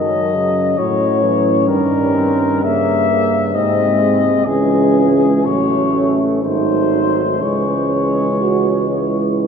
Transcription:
Already playing: tuba F#2, euphonium D#3, trombone section F#3, french horn section C#4, cornet D#5
0.35 euphonium C#3
0.78 tuba A2, euphonium F#3, trombone section F#3, french horn section C#4, cornet C#5
1.23 euphonium E3
1.68 tuba G2, euphonium D#3, trombone section G3, cornet A#4
2.15 trombone section C4
2.64 euphonium C#3, trombone section A#3, french horn section A#3, cornet E5
3.10 euphonium C#3
3.55 tuba G#2, euphonium C3, trombone section G#3, french horn section C4, cornet D#5
4.46 tuba C#2, euphonium E3, trombone section G#3, french horn section C#4, cornet G#4
5.45 tuba A1, euphonium F#3, trombone section A3, french horn section C#4, cornet C#5
6.42 tuba G#1, euphonium F#3, trombone section A3, french horn section D#4, cornet C5
7.40 tuba C#2, euphonium E3, trombone section G#3, french horn section C#4, cornet C#5
8.41 french horn section F#4
8.92 french horn section E4
9.44 french horn section D#4

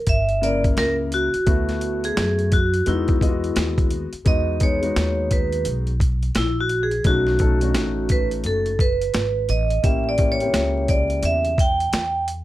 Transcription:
Already playing: vibraphone A#4
0.07 upright bass G1, vibraphone E5, kick, closed hi-hat
0.29 closed hi-hat
0.41 grand piano C#3 A#3 E4 A#4, vibraphone D5, closed hi-hat
0.64 kick, closed hi-hat
0.77 upright bass C#2, vibraphone A#4, snare, closed hi-hat
1.12 vibraphone F#4, closed hi-hat
1.34 muted upright bass stroke, closed hi-hat
1.46 upright bass D2, grand piano A3 B3 E4 F#4, kick, closed hi-hat
1.69 snare, closed hi-hat
1.81 closed hi-hat
2.04 vibraphone G#4, closed hi-hat
2.17 upright bass F#2, snare, closed hi-hat
2.39 closed hi-hat
2.52 vibraphone F#4, kick, closed hi-hat
2.74 closed hi-hat
2.86 upright bass E2, grand piano G#3 B3 D#4 F#4, vibraphone E4, closed hi-hat
3.08 kick, closed hi-hat
3.20 grand piano G#3 B3 F4 D#5, kick, closed hi-hat
3.29 grand piano F#4
3.44 closed hi-hat
3.56 upright bass D#2, snare, closed hi-hat
3.78 kick, closed hi-hat
3.91 closed hi-hat
4.13 muted upright bass stroke, closed hi-hat
4.25 upright bass E2, grand piano G#3 B3 D#4 F#4, vibraphone D#5, kick, closed hi-hat
4.60 grand piano G#3 B3 D#4 G#4, vibraphone C#5, kick, closed hi-hat
4.81 grand piano G#3 B3 D#4 F#4, closed hi-hat
4.96 upright bass D#2, snare, closed hi-hat
5.31 vibraphone B4, kick, closed hi-hat
5.52 closed hi-hat
5.65 upright bass B1, closed hi-hat
5.87 closed hi-hat
6.00 kick, closed hi-hat
6.23 closed hi-hat
6.35 upright bass A#1, vibraphone E4, snare, closed hi-hat
6.60 vibraphone F#4
6.69 closed hi-hat
6.83 vibraphone G#4
6.91 closed hi-hat
7.04 upright bass B1, grand piano A3 C#4 D#4 F#4, vibraphone F#4, kick, closed hi-hat
7.27 snare
7.39 grand piano A3 C#4 D#4 A4, kick, closed hi-hat
7.61 grand piano A3 C#4 D4 F#4, closed hi-hat
7.69 grand piano D#4
7.75 upright bass A1, snare, closed hi-hat
8.09 vibraphone B4, kick, closed hi-hat
8.31 closed hi-hat
8.44 upright bass F#1, vibraphone A4, closed hi-hat
8.66 closed hi-hat
8.79 vibraphone B4, kick, closed hi-hat
9.01 closed hi-hat
9.14 upright bass G#1, snare, closed hi-hat
9.49 upright bass A1, vibraphone D#5, closed hi-hat
9.70 closed hi-hat
9.83 upright bass A1, grand piano A#3 C#4 E4 G4, vibraphone E5, kick, closed hi-hat
10.09 vibraphone D5
10.17 grand piano A#3 C#4 E4 G4, kick, closed hi-hat
10.32 vibraphone C#5
10.39 grand piano A#3 C4 E4 G4, closed hi-hat
10.46 grand piano C#3
10.53 upright bass C#2, snare, closed hi-hat
10.88 vibraphone D5, kick, closed hi-hat
11.10 closed hi-hat
11.23 upright bass E2, vibraphone E5, closed hi-hat
11.45 closed hi-hat
11.58 vibraphone G5, kick, closed hi-hat
11.80 closed hi-hat
11.93 upright bass E2, snare, closed hi-hat
12.28 closed hi-hat

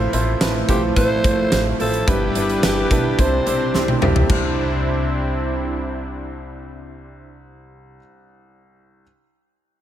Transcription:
Already playing: grand piano A2 A3 C4 E4 F4 C5, analog synth pad F3 A3 E4
0.13 upright bass A1, grand piano A3 C4 E4 F4 C5, closed hi-hat
0.41 upright bass A1, grand piano A3 C4 E4 F4 B4, snare, closed hi-hat, tambourine
0.68 upright bass B1, grand piano A3 C4 E4 F4 C5, alto saxophone G4, kick, closed hi-hat
0.96 upright bass A1, grand piano A3 C4 E4 F4 C5, alto saxophone C5, kick, closed hi-hat
1.24 upright bass G1, grand piano A3 C4 E4 F4 C5, kick, closed hi-hat
1.52 upright bass A1, grand piano A3 C4 E4 F4 C5, alto saxophone C5, snare, closed hi-hat, tambourine
1.80 upright bass A1, grand piano A3 C4 E4 F4 C5, alto saxophone A4, open hi-hat
1.94 closed hi-hat
2.07 upright bass G1, grand piano G2 G3 B3 D4 E4 B4, analog synth pad G3 D4 B4, alto saxophone G4, kick, closed hi-hat
2.35 upright bass G1, grand piano G3 B3 D4 E4 B4, closed hi-hat
2.49 closed hi-hat
2.63 upright bass G1, grand piano G3 B3 D4 E4 B4, alto saxophone G4, snare, closed hi-hat, tambourine
2.91 upright bass B1, grand piano G3 B3 D4 E4 B4, kick, closed hi-hat
3.18 upright bass C2, grand piano C3 G3 C4 D4 E4 C5, analog synth pad C3 C4, alto saxophone C5, kick, closed hi-hat
3.46 upright bass B1, grand piano G3 C4 D4 E4 C5, closed hi-hat
3.74 upright bass C2, grand piano G3 C4 D4 E4 C5, snare
3.88 high tom
4.01 upright bass C2, grand piano G3 C4 D4 E4 G4, mid tom
4.16 floor tom
4.27 upright bass C2, grand piano C2 G3 D4 E4, analog synth pad C3 C4 D4 E4, kick, china
4.32 grand piano C5

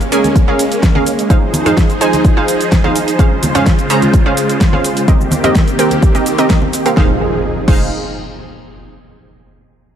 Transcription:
Already playing: supersaw synth G#3 A#3 C#4
0.01 closed hi-hat, shaker
0.12 synth pluck C#4 G#4 A#4 G#5, open hi-hat, shaker
0.24 closed hi-hat, high conga, shaker
0.36 kick, closed hi-hat, shaker
0.48 synth pluck C#4 G#4 A#4 F5
0.59 open hi-hat, shaker
0.72 closed hi-hat, shaker
0.83 kick, snare, closed hi-hat, shaker
0.95 synth pluck C#4 G#4 A#4 F5, high conga
1.06 open hi-hat, shaker
1.19 closed hi-hat, shaker
1.30 supersaw synth F3 D#4 G#4 C5, synth pluck D#4 G#4 C5 F5, kick, closed hi-hat, shaker
1.53 open hi-hat, high conga, shaker
1.66 synth pluck D#4 G#4 C5 F5, closed hi-hat, low conga, shaker
1.77 kick, snare, closed hi-hat, shaker
1.90 closed hi-hat, shaker
2.01 synth pluck D#4 G#4 C5 G#5, open hi-hat, shaker
2.13 closed hi-hat, high conga, shaker
2.25 kick, open hi-hat, shaker
2.37 synth pluck D#4 G#4 C5 F5
2.48 open hi-hat, shaker
2.61 closed hi-hat, shaker
2.72 kick, snare, closed hi-hat, shaker
2.84 synth pluck D#4 G#4 C5 F5, high conga
2.96 open hi-hat, shaker
3.08 closed hi-hat, shaker
3.19 supersaw synth C#3 G#3 F4, synth pluck C#4 G#4 C5 F5, kick, closed hi-hat, shaker
3.43 open hi-hat, high conga, shaker
3.55 synth pluck C#4 G#4 C5 F5, closed hi-hat, low conga, shaker
3.66 kick, snare, closed hi-hat, shaker
3.79 closed hi-hat, shaker
3.90 synth pluck C#4 G#4 C5 A#5, open hi-hat, shaker
4.02 closed hi-hat, high conga, shaker
4.13 kick, closed hi-hat, shaker
4.26 synth pluck C#4 G#4 C5 F5
4.37 open hi-hat, shaker
4.49 closed hi-hat, shaker
4.61 kick, snare, closed hi-hat, shaker
4.73 synth pluck C#4 G#4 C5 F5, high conga
4.84 open hi-hat, shaker
4.97 closed hi-hat, shaker
5.08 supersaw synth D#3 A#3 C4 G4, synth pluck C4 G4 A#4 D#5, kick, closed hi-hat, shaker
5.21 shaker
5.31 open hi-hat, high conga, shaker
5.44 synth pluck C4 G4 A#4 D#5, closed hi-hat, low conga, shaker
5.55 kick, snare, closed hi-hat, shaker
5.68 closed hi-hat, shaker
5.79 synth pluck C4 G4 A#4 G5, open hi-hat, shaker
5.91 closed hi-hat, high conga, shaker
6.02 kick, open hi-hat, shaker
6.15 synth pluck C4 G4 A#4 D#5, closed hi-hat, shaker
6.26 open hi-hat, shaker
6.38 synth pluck C4 G4 A#4 D#5, closed hi-hat, shaker
6.50 synth pluck C4 G4 A#4 D#5, kick, snare, closed hi-hat, shaker
6.62 high conga
6.73 open hi-hat, shaker
6.86 synth pluck C4 G4 A#4 F5, closed hi-hat, shaker
6.97 sub bass F1, supersaw synth F3 C4 D#4 G#4, synth pluck D#4 G#4 C5 F5, kick, snare, impact
7.68 sub bass F1, synth pluck D#4 G#4 C5 F5, kick, crash

